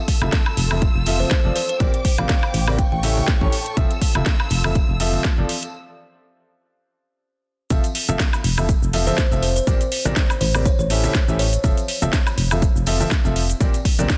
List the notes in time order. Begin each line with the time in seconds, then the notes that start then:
Already playing: F4 A4 E6
0.08 kick, open hi-hat, tambourine
0.21 F1 F3 C4 F4 A4 E5, tambourine, high conga, high woodblock
0.32 kick, snare, closed hi-hat, tambourine
0.46 tambourine, high woodblock
0.57 F1, open hi-hat, tambourine
0.70 F3 C4 F4 A4 E5, tambourine, high conga, high woodblock
0.82 kick, closed hi-hat, tambourine
0.95 F1
1.06 F3 C4 F4 A4 E5, open hi-hat, tambourine
1.19 C5, tambourine, high conga
1.31 C5, kick, snare, closed hi-hat, tambourine
1.45 F1 F3 C4 F4 A4 D5
1.56 C5, open hi-hat, tambourine
1.69 C5, closed hi-hat, tambourine
1.80 A#1 A#2 C4 G4 A#4 C5 D5 G5 D6, kick, closed hi-hat, tambourine
1.93 closed hi-hat, tambourine
2.05 kick, open hi-hat, tambourine
2.18 A#1 A#2 C4 G4 A#4 D5 F5, closed hi-hat, tambourine, high conga, high woodblock
2.29 kick, snare, closed hi-hat, tambourine
2.43 tambourine, high woodblock
2.54 A1, open hi-hat, tambourine
2.67 C4 G4 A#4 D5, tambourine, high conga, high woodblock
2.79 A4 G5 C#6, kick, closed hi-hat, tambourine
2.92 A1 G5
3.03 A2 C#4 G4 A4 E5, open hi-hat, tambourine, high conga
3.17 tambourine, high conga
3.27 kick, snare, closed hi-hat, tambourine
3.41 A1 A2 C#4 G4 A4 C#5, kick
3.52 open hi-hat, tambourine
3.66 closed hi-hat, tambourine
3.77 F1 F3 C4 F4 A4 E5 E6, kick, closed hi-hat, tambourine
3.91 closed hi-hat, tambourine
4.02 kick, open hi-hat, tambourine
4.15 F1 F3 C4 F4 A4 E5, tambourine, high conga, high woodblock
4.26 kick, snare, closed hi-hat, tambourine
4.40 tambourine, high woodblock
4.50 F1, open hi-hat, tambourine
4.64 F3 C4 F4 A4 E5, tambourine, high conga, high woodblock
4.75 kick, closed hi-hat, tambourine
4.89 F1
5.00 F3 C4 F4 A4 E5, open hi-hat, tambourine
5.13 tambourine, high conga
5.24 kick, snare, closed hi-hat, tambourine
5.38 F1 F3 C4 F4 A4 D5
5.49 open hi-hat, tambourine
5.63 closed hi-hat, tambourine
7.70 F1 F3 C4 F4 A4 E5, kick, closed hi-hat, tambourine, shaker
7.84 closed hi-hat, tambourine, shaker
7.95 open hi-hat, tambourine
8.09 F1 F3 C4 F4 A4 E5, tambourine, high conga, shaker
8.19 kick, snare, closed hi-hat, tambourine, shaker
8.33 tambourine, high woodblock, shaker
8.44 F1, open hi-hat, tambourine
8.57 F3 C4 F4 A4 E5, tambourine, high conga, high woodblock, shaker
8.69 kick, closed hi-hat, tambourine, shaker
8.82 F1, shaker
8.93 F3 C4 F4 A4 E5, open hi-hat, tambourine
9.06 F3 C4 F4 A4 C5 E5, tambourine, high conga, shaker
9.18 C5, kick, snare, closed hi-hat, shaker
9.31 F1 F3 C4 F4 A4 E5, tambourine, shaker
9.42 C5, open hi-hat, tambourine
9.56 C5, closed hi-hat, tambourine, shaker
9.67 A#1 A#2 C4 G4 A#4 D5, kick, closed hi-hat, tambourine, shaker
9.81 closed hi-hat, tambourine, shaker
9.92 open hi-hat, tambourine
10.05 A#1 A#2 C4 G4 A#4 D5, closed hi-hat, tambourine, high conga, shaker
10.16 kick, snare, closed hi-hat, tambourine, shaker
10.30 tambourine, high woodblock, shaker
10.41 A1 C5, open hi-hat, tambourine
10.54 C4 G4 A#4 D5, tambourine, high conga, high woodblock, shaker
10.65 C#5, kick, closed hi-hat, tambourine, shaker
10.79 A1 C#5, shaker
10.90 A2 C#4 G4 A4 E5, open hi-hat, tambourine
11.04 A2 C#4 G4 A4 E5, tambourine, high conga, shaker
11.15 kick, snare, closed hi-hat, tambourine, shaker
11.28 A1 A2 C#4 G4 A4 E5, tambourine, shaker
11.39 C#5, open hi-hat, tambourine
11.53 closed hi-hat, tambourine, shaker
11.63 F1 F3 C4 F4 A4 E5, kick, closed hi-hat, tambourine, shaker
11.77 closed hi-hat, tambourine, shaker
11.88 open hi-hat, tambourine
12.02 F1 F3 C4 F4 A4 E5, closed hi-hat, tambourine, high conga, shaker
12.13 kick, snare, closed hi-hat, tambourine, shaker
12.27 tambourine, high woodblock, shaker
12.38 F1, open hi-hat, tambourine
12.51 F3 C4 F4 A4 E5, tambourine, high conga, high woodblock, shaker
12.62 kick, closed hi-hat, tambourine, shaker
12.76 F1, shaker
12.86 F3 C4 F4 A4 E5, open hi-hat, tambourine
13.00 F3 C4 F4 A4 E5, tambourine, high conga, shaker
13.11 kick, snare, closed hi-hat, tambourine, shaker
13.25 F1 F3 C4 F4 A4 E5, tambourine, shaker
13.36 open hi-hat, tambourine
13.49 closed hi-hat, tambourine, shaker
13.61 A#1 A#2 C4 G4 A#4 D5, kick, closed hi-hat, tambourine, shaker
13.74 closed hi-hat, tambourine, shaker
13.85 kick, open hi-hat, tambourine
13.99 A#1 A#2 C4 G4 A#4 D5, closed hi-hat, tambourine, high conga, shaker
14.10 kick, snare, closed hi-hat, tambourine, shaker